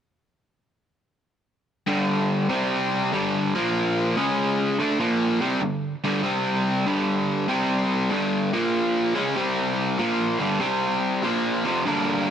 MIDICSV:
0, 0, Header, 1, 2, 480
1, 0, Start_track
1, 0, Key_signature, -2, "minor"
1, 0, Tempo, 623701
1, 1437, Time_signature, 4, 2, 24, 8
1, 9469, End_track
2, 0, Start_track
2, 0, Title_t, "Overdriven electric guitar"
2, 0, Program_c, 0, 29
2, 1437, Note_on_c, 0, 43, 83
2, 1443, Note_on_c, 0, 50, 90
2, 1448, Note_on_c, 0, 55, 94
2, 1911, Note_off_c, 0, 55, 0
2, 1912, Note_off_c, 0, 43, 0
2, 1912, Note_off_c, 0, 50, 0
2, 1915, Note_on_c, 0, 48, 98
2, 1920, Note_on_c, 0, 55, 91
2, 1925, Note_on_c, 0, 60, 105
2, 2391, Note_off_c, 0, 48, 0
2, 2394, Note_off_c, 0, 55, 0
2, 2396, Note_off_c, 0, 60, 0
2, 2401, Note_on_c, 0, 43, 89
2, 2408, Note_on_c, 0, 50, 90
2, 2415, Note_on_c, 0, 55, 107
2, 2711, Note_off_c, 0, 43, 0
2, 2714, Note_off_c, 0, 50, 0
2, 2718, Note_off_c, 0, 55, 0
2, 2730, Note_on_c, 0, 46, 84
2, 2733, Note_on_c, 0, 53, 103
2, 2736, Note_on_c, 0, 58, 101
2, 3195, Note_off_c, 0, 46, 0
2, 3196, Note_off_c, 0, 53, 0
2, 3197, Note_off_c, 0, 58, 0
2, 3207, Note_on_c, 0, 49, 83
2, 3211, Note_on_c, 0, 56, 97
2, 3217, Note_on_c, 0, 61, 102
2, 3673, Note_off_c, 0, 49, 0
2, 3675, Note_off_c, 0, 56, 0
2, 3678, Note_off_c, 0, 61, 0
2, 3687, Note_on_c, 0, 50, 84
2, 3692, Note_on_c, 0, 57, 84
2, 3695, Note_on_c, 0, 62, 100
2, 3836, Note_off_c, 0, 50, 0
2, 3839, Note_off_c, 0, 57, 0
2, 3840, Note_off_c, 0, 62, 0
2, 3843, Note_on_c, 0, 46, 95
2, 3846, Note_on_c, 0, 53, 99
2, 3850, Note_on_c, 0, 58, 104
2, 4151, Note_off_c, 0, 46, 0
2, 4153, Note_off_c, 0, 53, 0
2, 4155, Note_off_c, 0, 58, 0
2, 4165, Note_on_c, 0, 48, 97
2, 4169, Note_on_c, 0, 55, 106
2, 4171, Note_on_c, 0, 60, 110
2, 4315, Note_off_c, 0, 48, 0
2, 4317, Note_off_c, 0, 55, 0
2, 4318, Note_off_c, 0, 60, 0
2, 4320, Note_on_c, 0, 43, 62
2, 4323, Note_on_c, 0, 50, 69
2, 4575, Note_off_c, 0, 43, 0
2, 4576, Note_off_c, 0, 50, 0
2, 4649, Note_on_c, 0, 43, 91
2, 4654, Note_on_c, 0, 50, 98
2, 4656, Note_on_c, 0, 55, 108
2, 4786, Note_off_c, 0, 55, 0
2, 4794, Note_off_c, 0, 50, 0
2, 4795, Note_on_c, 0, 55, 92
2, 4797, Note_off_c, 0, 43, 0
2, 4797, Note_on_c, 0, 48, 97
2, 4799, Note_on_c, 0, 60, 106
2, 5270, Note_off_c, 0, 55, 0
2, 5271, Note_off_c, 0, 48, 0
2, 5272, Note_off_c, 0, 60, 0
2, 5278, Note_on_c, 0, 43, 88
2, 5283, Note_on_c, 0, 50, 95
2, 5284, Note_on_c, 0, 55, 106
2, 5750, Note_off_c, 0, 55, 0
2, 5751, Note_off_c, 0, 43, 0
2, 5754, Note_off_c, 0, 50, 0
2, 5757, Note_on_c, 0, 48, 97
2, 5759, Note_on_c, 0, 55, 106
2, 5763, Note_on_c, 0, 60, 109
2, 6231, Note_off_c, 0, 48, 0
2, 6232, Note_off_c, 0, 55, 0
2, 6234, Note_off_c, 0, 60, 0
2, 6237, Note_on_c, 0, 43, 89
2, 6239, Note_on_c, 0, 50, 88
2, 6248, Note_on_c, 0, 55, 108
2, 6548, Note_off_c, 0, 43, 0
2, 6549, Note_off_c, 0, 50, 0
2, 6553, Note_off_c, 0, 55, 0
2, 6564, Note_on_c, 0, 46, 90
2, 6568, Note_on_c, 0, 53, 102
2, 6571, Note_on_c, 0, 58, 100
2, 7031, Note_off_c, 0, 46, 0
2, 7033, Note_off_c, 0, 53, 0
2, 7034, Note_off_c, 0, 58, 0
2, 7039, Note_on_c, 0, 49, 92
2, 7045, Note_on_c, 0, 56, 94
2, 7050, Note_on_c, 0, 61, 101
2, 7191, Note_off_c, 0, 49, 0
2, 7194, Note_off_c, 0, 56, 0
2, 7197, Note_off_c, 0, 61, 0
2, 7201, Note_on_c, 0, 48, 91
2, 7205, Note_on_c, 0, 55, 100
2, 7210, Note_on_c, 0, 60, 95
2, 7673, Note_off_c, 0, 48, 0
2, 7675, Note_off_c, 0, 55, 0
2, 7678, Note_off_c, 0, 60, 0
2, 7683, Note_on_c, 0, 46, 85
2, 7690, Note_on_c, 0, 53, 107
2, 7692, Note_on_c, 0, 58, 117
2, 7991, Note_off_c, 0, 46, 0
2, 7995, Note_off_c, 0, 53, 0
2, 7995, Note_on_c, 0, 43, 100
2, 7996, Note_off_c, 0, 58, 0
2, 8000, Note_on_c, 0, 50, 95
2, 8004, Note_on_c, 0, 55, 106
2, 8150, Note_off_c, 0, 43, 0
2, 8150, Note_off_c, 0, 50, 0
2, 8153, Note_on_c, 0, 48, 90
2, 8154, Note_off_c, 0, 55, 0
2, 8163, Note_on_c, 0, 55, 91
2, 8164, Note_on_c, 0, 60, 96
2, 8631, Note_off_c, 0, 48, 0
2, 8635, Note_off_c, 0, 55, 0
2, 8636, Note_off_c, 0, 60, 0
2, 8639, Note_on_c, 0, 46, 95
2, 8647, Note_on_c, 0, 53, 99
2, 8652, Note_on_c, 0, 58, 95
2, 8951, Note_off_c, 0, 46, 0
2, 8955, Note_off_c, 0, 53, 0
2, 8957, Note_off_c, 0, 58, 0
2, 8963, Note_on_c, 0, 41, 90
2, 8964, Note_on_c, 0, 48, 91
2, 8971, Note_on_c, 0, 53, 91
2, 9115, Note_off_c, 0, 41, 0
2, 9116, Note_off_c, 0, 48, 0
2, 9119, Note_off_c, 0, 53, 0
2, 9123, Note_on_c, 0, 43, 84
2, 9126, Note_on_c, 0, 50, 79
2, 9130, Note_on_c, 0, 55, 79
2, 9131, Note_on_c, 0, 58, 91
2, 9139, Note_on_c, 0, 62, 93
2, 9144, Note_on_c, 0, 70, 89
2, 9469, Note_off_c, 0, 43, 0
2, 9469, Note_off_c, 0, 50, 0
2, 9469, Note_off_c, 0, 55, 0
2, 9469, Note_off_c, 0, 58, 0
2, 9469, Note_off_c, 0, 62, 0
2, 9469, Note_off_c, 0, 70, 0
2, 9469, End_track
0, 0, End_of_file